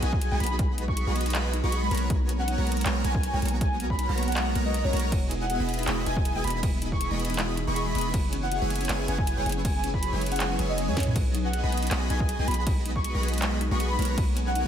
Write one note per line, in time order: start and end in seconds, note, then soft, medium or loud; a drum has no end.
0.00 0.29 B1 loud
0.00 5.08 G#3 medium
0.00 8.10 B3 medium
0.00 0.29 B3 medium
0.00 1.88 D#4 medium
0.00 0.09 D#4 loud
0.00 0.29 F#4 medium
0.00 0.29 G#4 medium
0.00 0.29 D#5 medium
0.00 0.29 G#5 loud
0.00 0.11 G#5 medium
0.00 closed hi-hat medium
0.00 impact medium
0.13 0.18 G#5 medium
0.13 kick loud
0.21 0.31 G#4 medium
0.21 0.28 G#5 medium
0.21 closed hi-hat medium
0.31 0.39 B1 loud
0.31 0.40 G#3 medium
0.31 0.38 B3 medium
0.31 0.38 F#4 medium
0.31 0.38 G#4 medium
0.31 0.38 D#5 medium
0.31 0.38 G#5 medium
0.40 1.05 B1 loud
0.40 0.50 B3 medium
0.40 1.05 B3 medium
0.40 1.05 F#4 medium
0.40 1.05 G#4 medium
0.40 1.04 D#5 medium
0.40 0.47 B5 medium
0.40 1.05 B5 medium
0.40 closed hi-hat medium
0.44 closed hi-hat medium
0.47 0.56 D#4 medium
0.47 0.56 B5 medium
0.47 closed hi-hat medium
0.59 0.66 G#3 medium
0.59 kick loud
0.59 closed hi-hat medium
0.69 0.75 B3 medium
0.78 0.85 D#4 loud
0.78 closed hi-hat medium
0.88 0.94 F#4 medium
0.88 1.04 C#6 loud
0.88 kick medium
0.97 1.07 G#4 medium
0.97 closed hi-hat medium
1.07 1.62 B1 loud
1.07 1.15 G#3 medium
1.07 1.51 B3 medium
1.07 1.51 F#4 medium
1.07 1.51 G#4 medium
1.07 1.51 D#5 medium
1.07 1.51 B5 medium
1.16 1.25 B3 medium
1.16 closed hi-hat medium
1.21 closed hi-hat medium
1.26 1.32 D#4 medium
1.26 closed hi-hat medium
1.30 closed hi-hat medium
1.34 1.41 G#3 medium
1.34 clap loud
1.34 closed hi-hat medium
1.45 1.50 B3 medium
1.53 1.60 D#4 loud
1.53 closed hi-hat medium
1.64 1.89 B1 loud
1.64 1.89 B3 medium
1.64 1.69 F#4 medium
1.64 1.89 F#4 medium
1.64 1.89 G#4 medium
1.64 1.89 D#5 medium
1.64 1.89 B5 medium
1.64 1.69 C#6 medium
1.72 1.82 G#4 medium
1.72 1.79 C#6 medium
1.72 closed hi-hat medium
1.83 1.91 G#3 medium
1.83 1.95 B5 loud
1.91 2.08 B1 loud
1.91 2.01 A#3 medium
1.91 2.08 B3 medium
1.91 2.08 F#4 medium
1.91 8.10 F#4 loud
1.91 2.08 A#4 medium
1.91 2.08 C#5 medium
1.91 2.08 A#5 medium
1.91 closed hi-hat medium
1.95 closed hi-hat medium
1.97 2.07 B3 medium
1.97 closed hi-hat medium
2.10 2.56 B1 loud
2.10 2.17 G#3 medium
2.10 2.56 B3 medium
2.10 2.55 F#4 medium
2.10 2.55 A#4 medium
2.10 2.55 C#5 medium
2.10 2.55 G#5 medium
2.10 kick loud
2.10 closed hi-hat medium
2.20 2.26 A#3 medium
2.29 2.35 B3 loud
2.29 closed hi-hat medium
2.39 2.45 C#4 medium
2.39 2.55 F#5 medium
2.48 2.57 D#4 medium
2.48 closed hi-hat medium
2.58 2.84 B1 loud
2.58 2.66 G#3 medium
2.58 2.83 B3 medium
2.58 2.83 F#4 medium
2.58 2.83 A#4 medium
2.58 2.83 C#5 medium
2.58 2.83 A#5 medium
2.67 2.76 A#3 medium
2.67 closed hi-hat soft
2.72 closed hi-hat medium
2.77 2.82 B3 medium
2.77 closed hi-hat medium
2.81 closed hi-hat medium
2.85 3.03 B1 loud
2.85 2.92 G#3 medium
2.85 3.02 B3 medium
2.85 3.02 F#4 medium
2.85 3.02 A#4 medium
2.85 3.02 C#5 medium
2.85 3.02 A#5 loud
2.85 clap loud
2.85 closed hi-hat medium
2.95 3.01 A#3 medium
3.04 3.31 B1 loud
3.04 3.11 B3 loud
3.04 3.31 B3 medium
3.04 3.31 F#4 medium
3.04 3.31 A#4 medium
3.04 3.31 C#5 medium
3.04 3.12 G#5 loud
3.04 3.31 G#5 loud
3.04 closed hi-hat medium
3.14 3.20 C#4 medium
3.14 3.20 G#5 medium
3.14 kick loud
3.23 3.33 D#4 medium
3.23 3.30 G#5 medium
3.23 closed hi-hat medium
3.33 3.40 B1 medium
3.33 3.42 G#3 medium
3.33 3.40 B3 medium
3.33 3.40 F#4 medium
3.33 3.40 A#4 medium
3.33 3.40 C#5 medium
3.33 3.40 G#5 medium
3.42 4.07 B1 loud
3.42 3.52 A#3 medium
3.42 4.06 B3 medium
3.42 4.06 F#4 medium
3.42 4.06 A#4 medium
3.42 4.06 C#5 medium
3.42 4.06 A#5 medium
3.42 closed hi-hat soft
3.46 closed hi-hat medium
3.48 3.58 B3 medium
3.48 closed hi-hat medium
3.61 3.68 G#3 medium
3.61 3.77 G#5 loud
3.61 kick loud
3.61 closed hi-hat medium
3.71 3.77 A#3 medium
3.80 3.87 B3 loud
3.80 closed hi-hat medium
3.90 3.96 C#4 medium
3.90 4.05 B5 medium
3.90 kick medium
3.99 4.08 D#4 medium
3.99 closed hi-hat medium
4.09 4.54 B1 loud
4.09 4.17 G#3 medium
4.09 4.53 B3 medium
4.09 4.53 F#4 medium
4.09 4.53 A#4 medium
4.09 4.53 C#5 medium
4.09 4.53 A#5 medium
4.17 4.27 A#3 medium
4.17 closed hi-hat soft
4.23 closed hi-hat medium
4.28 4.33 B3 medium
4.28 4.43 F#5 loud
4.28 closed hi-hat soft
4.32 closed hi-hat medium
4.36 4.43 G#3 medium
4.36 clap loud
4.36 closed hi-hat medium
4.47 4.52 A#3 medium
4.55 4.82 B1 medium
4.55 4.65 A#3 loud
4.55 4.82 B3 medium
4.55 4.82 F#4 medium
4.55 4.82 A#4 medium
4.55 4.82 C#5 medium
4.55 4.82 A#5 medium
4.55 closed hi-hat medium
4.66 4.71 G#3 loud
4.66 4.71 D#5 medium
4.74 4.81 G#3 medium
4.74 4.81 D#5 medium
4.74 closed hi-hat medium
4.84 4.91 B1 loud
4.84 4.91 B3 medium
4.84 4.90 C#4 medium
4.84 4.91 F#4 medium
4.84 4.91 A#4 medium
4.84 4.91 C#5 medium
4.84 4.90 C#5 medium
4.84 4.91 A#5 medium
4.93 5.14 B1 loud
4.93 5.03 A#3 medium
4.93 5.10 B3 loud
4.93 5.10 F#4 medium
4.93 5.10 A#4 medium
4.93 5.10 C#5 medium
4.93 5.00 C#5 medium
4.93 5.10 A#5 loud
4.93 closed hi-hat soft
4.97 closed hi-hat medium
5.00 5.09 G#3 medium
5.00 closed hi-hat medium
5.12 5.58 E1 loud
5.12 8.11 E3 medium
5.12 5.19 G#3 medium
5.12 5.57 B3 medium
5.12 5.57 E4 medium
5.12 5.57 G#4 medium
5.12 11.12 G#4 loud
5.12 5.57 D#5 medium
5.12 8.11 D#5 medium
5.12 5.57 G#5 medium
5.12 kick loud
5.12 closed hi-hat medium
5.12 crash soft
5.22 5.28 B3 medium
5.31 5.37 D#4 loud
5.31 closed hi-hat medium
5.41 5.47 E4 medium
5.41 5.56 F#5 medium
5.50 5.59 G#4 medium
5.50 closed hi-hat medium
5.60 5.86 E1 loud
5.60 5.68 G#3 medium
5.60 5.85 B3 medium
5.60 5.85 E4 medium
5.60 5.85 G#4 medium
5.60 5.85 D#5 medium
5.60 5.85 B5 medium
5.68 5.78 B3 medium
5.68 closed hi-hat soft
5.74 closed hi-hat medium
5.79 5.84 D#4 medium
5.79 closed hi-hat soft
5.83 closed hi-hat medium
5.87 6.05 E1 loud
5.87 5.94 G#3 medium
5.87 6.04 B3 medium
5.87 6.04 E4 medium
5.87 6.04 G#4 medium
5.87 6.04 D#5 medium
5.87 6.04 B5 loud
5.87 clap loud
5.87 closed hi-hat medium
5.97 6.03 B3 medium
6.06 6.33 E1 loud
6.06 6.33 B3 medium
6.06 6.13 D#4 loud
6.06 6.33 E4 medium
6.06 6.33 G#4 medium
6.06 6.33 D#5 medium
6.06 6.14 G#5 loud
6.06 6.33 G#5 loud
6.06 closed hi-hat medium
6.17 6.22 G#5 medium
6.17 kick loud
6.25 6.35 G#4 medium
6.25 6.32 G#5 medium
6.25 closed hi-hat medium
6.35 6.42 E1 loud
6.35 6.44 G#3 medium
6.35 6.42 B3 medium
6.35 6.42 E4 medium
6.35 6.42 G#4 medium
6.35 6.42 D#5 medium
6.35 6.42 G#5 medium
6.35 6.42 G#5 loud
6.44 7.09 E1 loud
6.44 7.08 B3 medium
6.44 6.54 B3 medium
6.44 7.08 E4 medium
6.44 7.08 G#4 medium
6.44 7.08 D#5 medium
6.44 7.08 B5 medium
6.44 6.51 B5 medium
6.44 closed hi-hat soft
6.47 closed hi-hat medium
6.50 6.60 D#4 medium
6.50 closed hi-hat medium
6.55 6.60 B5 medium
6.63 6.70 G#3 medium
6.63 kick loud
6.63 closed hi-hat medium
6.63 crash soft
6.73 6.79 B3 medium
6.82 6.89 D#4 loud
6.82 closed hi-hat medium
6.92 6.98 E4 medium
6.92 7.08 C#6 loud
6.92 kick medium
7.01 7.10 G#4 medium
7.01 closed hi-hat medium
7.11 7.65 E1 loud
7.11 7.19 G#3 medium
7.11 7.55 B3 medium
7.11 7.55 E4 medium
7.11 7.55 G#4 medium
7.11 7.55 D#5 medium
7.11 7.55 B5 medium
7.20 7.29 B3 medium
7.20 closed hi-hat soft
7.25 closed hi-hat medium
7.30 7.35 D#4 medium
7.30 closed hi-hat medium
7.34 closed hi-hat medium
7.38 7.45 G#3 medium
7.38 clap loud
7.38 closed hi-hat medium
7.49 7.54 B3 medium
7.57 7.64 D#4 loud
7.57 closed hi-hat medium
7.67 7.93 E1 medium
7.67 7.93 B3 medium
7.67 7.73 E4 medium
7.67 7.93 E4 medium
7.67 7.93 G#4 medium
7.67 7.93 D#5 medium
7.67 7.93 B5 medium
7.67 7.73 C#6 medium
7.76 7.86 G#4 medium
7.76 7.83 C#6 medium
7.76 closed hi-hat medium
7.86 7.94 G#3 medium
7.86 8.14 B5 loud
7.95 8.12 E1 loud
7.95 8.12 B3 medium
7.95 8.05 B3 medium
7.95 8.12 E4 medium
7.95 8.12 G#4 medium
7.95 8.12 D#5 medium
7.95 8.12 B5 medium
7.95 closed hi-hat medium
7.98 closed hi-hat medium
8.01 8.11 D#4 medium
8.01 closed hi-hat medium
8.14 8.60 F#1 loud
8.14 11.13 F#3 medium
8.14 8.20 G#3 medium
8.14 8.59 B3 medium
8.14 11.13 C#4 medium
8.14 8.59 E4 medium
8.14 11.13 E4 medium
8.14 8.59 G#4 medium
8.14 11.13 B4 loud
8.14 8.59 C#5 medium
8.14 8.59 F#5 medium
8.14 kick loud
8.14 closed hi-hat medium
8.14 crash soft
8.24 8.30 B3 medium
8.33 8.39 C#4 loud
8.33 closed hi-hat medium
8.43 8.49 E4 medium
8.43 8.58 F#5 medium
8.51 8.61 F#4 medium
8.51 closed hi-hat medium
8.62 8.88 F#1 loud
8.62 8.70 G#3 medium
8.62 8.87 B3 medium
8.62 8.87 E4 medium
8.62 8.87 G#4 medium
8.62 8.87 C#5 medium
8.62 8.87 G#5 medium
8.70 8.80 B3 medium
8.70 closed hi-hat medium
8.76 closed hi-hat medium
8.80 8.86 C#4 medium
8.80 closed hi-hat medium
8.85 closed hi-hat medium
8.89 9.06 F#1 loud
8.89 8.96 G#3 medium
8.89 9.06 B3 medium
8.89 9.06 E4 medium
8.89 9.06 G#4 medium
8.89 9.06 C#5 medium
8.89 9.06 G#5 loud
8.89 clap loud
8.89 closed hi-hat medium
8.99 9.05 B3 medium
9.08 9.35 F#1 loud
9.08 9.35 B3 medium
9.08 9.15 C#4 loud
9.08 9.35 E4 medium
9.08 9.35 G#4 medium
9.08 9.35 C#5 medium
9.08 9.35 F#5 medium
9.08 9.16 G#5 medium
9.08 closed hi-hat medium
9.18 9.24 G#5 medium
9.18 kick loud
9.27 9.37 F#4 medium
9.27 9.33 G#5 medium
9.27 closed hi-hat medium
9.37 9.44 F#1 loud
9.37 9.45 G#3 medium
9.37 9.44 B3 medium
9.37 9.44 E4 medium
9.37 9.44 G#4 medium
9.37 9.44 C#5 medium
9.37 9.44 F#5 medium
9.37 9.44 G#5 loud
9.46 10.11 F#1 loud
9.46 9.56 B3 medium
9.46 10.10 B3 medium
9.46 10.10 E4 medium
9.46 10.10 G#4 medium
9.46 10.10 C#5 medium
9.46 10.10 G#5 medium
9.46 closed hi-hat medium
9.49 closed hi-hat medium
9.52 9.62 C#4 medium
9.52 closed hi-hat medium
9.65 9.71 G#3 medium
9.65 9.81 G#5 medium
9.65 kick loud
9.65 closed hi-hat medium
9.65 crash soft
9.75 9.81 B3 medium
9.84 9.90 C#4 loud
9.84 closed hi-hat medium
9.94 9.99 E4 medium
9.94 10.09 B5 medium
9.94 kick medium
10.03 10.12 F#4 medium
10.03 closed hi-hat medium
10.13 10.57 F#1 loud
10.13 10.21 G#3 medium
10.13 10.57 B3 medium
10.13 10.57 E4 medium
10.13 10.57 G#4 medium
10.13 10.57 C#5 medium
10.13 10.57 G#5 medium
10.21 10.31 B3 medium
10.21 closed hi-hat medium
10.26 closed hi-hat medium
10.32 10.37 C#4 medium
10.32 10.47 F#5 medium
10.32 closed hi-hat medium
10.36 closed hi-hat medium
10.40 10.47 G#3 medium
10.40 clap loud
10.40 closed hi-hat medium
10.50 10.56 B3 medium
10.59 10.90 F#1 loud
10.59 10.63 G#3 medium
10.59 10.86 B3 medium
10.59 10.86 E4 medium
10.59 10.86 G#4 medium
10.59 10.86 C#5 medium
10.59 10.86 G#5 medium
10.59 closed hi-hat medium
10.69 10.73 F#4 medium
10.69 10.75 D#5 medium
10.78 10.85 B3 medium
10.78 10.85 D#5 medium
10.78 closed hi-hat medium
10.88 10.95 F#2 loud
10.88 10.94 G#3 medium
10.88 10.95 B3 medium
10.88 10.95 E4 medium
10.88 10.95 G#4 medium
10.88 10.95 C#5 medium
10.88 10.94 C#5 medium
10.88 10.95 G#5 medium
10.88 high tom medium
10.97 11.14 F#2 loud
10.97 11.14 B3 medium
10.97 11.14 E4 medium
10.97 11.14 G#4 medium
10.97 11.14 C#5 medium
10.97 11.03 C#5 medium
10.97 11.14 G#5 loud
10.97 kick medium
10.97 snare medium
10.97 closed hi-hat medium
11.00 closed hi-hat medium
11.03 closed hi-hat medium
11.03 mid tom medium
11.07 11.13 B3 medium
11.16 11.62 B1 loud
11.16 14.68 G#3 medium
11.16 11.22 G#3 medium
11.16 11.61 B3 medium
11.16 14.68 B3 medium
11.16 13.96 D#4 loud
11.16 11.61 F#4 medium
11.16 11.61 G#4 medium
11.16 11.61 D#5 medium
11.16 11.61 G#5 medium
11.16 kick loud
11.16 closed hi-hat medium
11.16 crash soft
11.26 11.32 B3 medium
11.35 11.41 D#4 loud
11.35 closed hi-hat medium
11.45 11.50 F#4 medium
11.45 11.60 F#5 medium
11.53 11.63 G#4 medium
11.53 closed hi-hat medium
11.63 11.89 B1 loud
11.63 11.72 G#3 medium
11.63 11.89 B3 medium
11.63 11.89 F#4 medium
11.63 11.89 G#4 medium
11.63 11.89 D#5 medium
11.63 11.89 B5 medium
11.72 11.82 B3 medium
11.72 closed hi-hat medium
11.77 closed hi-hat medium
11.82 11.88 D#4 medium
11.82 closed hi-hat medium
11.87 closed hi-hat medium
11.91 12.08 B1 loud
11.91 11.98 G#3 medium
11.91 12.08 B3 medium
11.91 12.08 F#4 medium
11.91 12.08 G#4 medium
11.91 12.08 D#5 medium
11.91 12.08 B5 loud
11.91 clap loud
11.91 closed hi-hat medium
12.01 12.07 B3 medium
12.10 12.37 B1 loud
12.10 12.37 B3 medium
12.10 12.17 D#4 loud
12.10 12.37 F#4 medium
12.10 12.37 G#4 medium
12.10 12.37 D#5 medium
12.10 12.18 G#5 loud
12.10 12.37 G#5 loud
12.10 closed hi-hat medium
12.20 12.26 G#5 medium
12.20 kick loud
12.29 12.39 G#4 medium
12.29 12.35 G#5 medium
12.29 closed hi-hat medium
12.39 12.46 B1 loud
12.39 12.47 G#3 medium
12.39 12.46 B3 medium
12.39 12.46 F#4 medium
12.39 12.46 G#4 medium
12.39 12.46 D#5 medium
12.39 12.46 G#5 medium
12.39 12.46 G#5 loud
12.48 13.12 B1 loud
12.48 12.57 B3 medium
12.48 13.12 B3 medium
12.48 13.12 F#4 medium
12.48 13.12 G#4 medium
12.48 13.12 D#5 medium
12.48 13.12 B5 medium
12.48 12.54 B5 medium
12.48 closed hi-hat medium
12.51 closed hi-hat medium
12.54 12.64 D#4 medium
12.54 closed hi-hat medium
12.58 12.64 B5 medium
12.67 12.73 G#3 medium
12.67 kick loud
12.67 closed hi-hat medium
12.67 crash soft
12.77 12.82 B3 medium
12.85 12.92 D#4 loud
12.85 closed hi-hat medium
12.96 13.01 F#4 medium
12.96 13.11 C#6 medium
12.96 kick medium
13.04 13.14 G#4 medium
13.04 closed hi-hat medium
13.14 13.69 B1 loud
13.14 13.23 G#3 medium
13.14 13.59 B3 medium
13.14 13.59 F#4 medium
13.14 13.59 G#4 medium
13.14 13.59 D#5 medium
13.14 13.59 B5 medium
13.23 13.33 B3 medium
13.23 closed hi-hat medium
13.28 closed hi-hat medium
13.33 13.39 D#4 medium
13.33 closed hi-hat medium
13.38 closed hi-hat medium
13.42 13.49 G#3 medium
13.42 clap loud
13.42 closed hi-hat medium
13.52 13.58 B3 medium
13.61 13.68 D#4 loud
13.61 closed hi-hat medium
13.71 13.97 B1 loud
13.71 13.97 B3 medium
13.71 13.77 F#4 medium
13.71 13.97 F#4 medium
13.71 13.97 G#4 medium
13.71 13.97 D#5 medium
13.71 13.97 B5 medium
13.71 13.77 C#6 medium
13.80 13.90 G#4 medium
13.80 13.86 C#6 medium
13.80 closed hi-hat medium
13.90 13.98 G#3 medium
13.90 14.03 B5 loud
13.99 14.16 B1 loud
13.99 14.08 A#3 medium
13.99 14.16 B3 medium
13.99 14.68 F#4 loud
13.99 14.16 F#4 medium
13.99 14.16 A#4 medium
13.99 14.16 C#5 medium
13.99 14.16 A#5 medium
13.99 closed hi-hat medium
14.02 closed hi-hat medium
14.05 14.15 B3 medium
14.05 closed hi-hat medium
14.18 14.63 B1 loud
14.18 14.24 G#3 medium
14.18 14.63 B3 medium
14.18 14.63 F#4 medium
14.18 14.63 A#4 medium
14.18 14.63 C#5 medium
14.18 14.63 G#5 medium
14.18 kick loud
14.18 closed hi-hat medium
14.18 crash soft
14.28 14.34 A#3 medium
14.37 14.43 B3 loud
14.37 closed hi-hat medium
14.47 14.52 C#4 medium
14.47 14.62 F#5 loud
14.55 14.65 D#4 medium
14.55 closed hi-hat medium